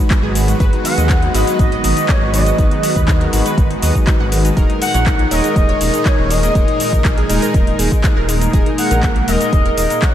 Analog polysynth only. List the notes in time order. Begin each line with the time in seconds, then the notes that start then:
Already playing: G#3 F#4 B4
0.60 G#3 F#4 B4
1.34 G#3 F#4 B4
2.58 G#3 F#4 B4
3.33 G#3 F#4 B4
4.57 G#3 D#4 A#4
5.31 G#3 D#4 A#4
6.55 G#3 D#4 A#4
7.30 G#3 D#4 A#4
8.54 G#3 D#4 A#4
9.28 G#3 D#4 A#4